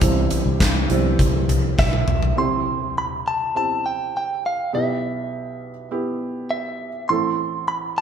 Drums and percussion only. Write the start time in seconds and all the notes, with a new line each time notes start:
0.01 kick, closed hi-hat
0.30 closed hi-hat, floor tom
0.60 kick, snare, clap, closed hi-hat
0.90 closed hi-hat
1.19 kick, closed hi-hat
1.49 closed hi-hat, floor tom
1.78 kick, snare
1.93 high tom
2.08 mid tom
2.23 floor tom